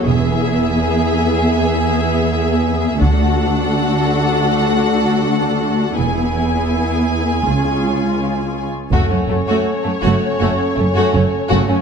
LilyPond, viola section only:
\new Staff \with { instrumentName = "Viola section" } { \time 4/4 \key fis \minor \tempo 4 = 81 <b gis'>1 | <d' fis'>1 | <b e'>2 <cis' eis'>4.~ <cis' eis'>16 r16 | a16 a16 a16 a16 r16 a16 a16 r16 a16 r16 a16 a16 a16 r16 a16 a16 | }